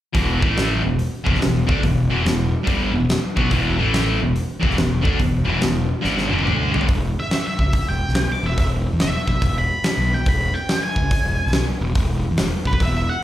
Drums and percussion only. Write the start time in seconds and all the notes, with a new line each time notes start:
0.15 kick, open hi-hat
0.42 kick
0.57 snare, open hi-hat
0.99 open hi-hat
1.26 kick
1.35 snare
1.42 snare, open hi-hat
1.69 kick
1.83 kick, open hi-hat
2.26 snare, open hi-hat
2.67 kick, open hi-hat
3.09 snare, open hi-hat
3.37 kick
3.51 kick, open hi-hat
3.94 snare, open hi-hat
4.36 open hi-hat
4.63 kick
4.70 snare
4.78 snare, open hi-hat
5.05 kick
5.19 kick, open hi-hat
5.61 snare, open hi-hat
6.04 snare
6.18 snare
6.39 high tom
6.47 mid tom
6.74 floor tom
6.81 floor tom
6.88 kick, open hi-hat
7.31 snare, open hi-hat
7.59 kick
7.73 kick, open hi-hat
8.08 snare
8.15 snare, open hi-hat
8.58 kick, open hi-hat
9.00 snare, open hi-hat
9.28 kick
9.42 kick, open hi-hat
9.84 snare, open hi-hat
10.26 kick, open hi-hat
10.69 snare, open hi-hat
10.96 kick
11.11 kick, open hi-hat
11.47 snare
11.53 snare, open hi-hat
11.95 kick, open hi-hat
12.37 snare, open hi-hat
12.65 kick
12.73 kick
12.80 kick, open hi-hat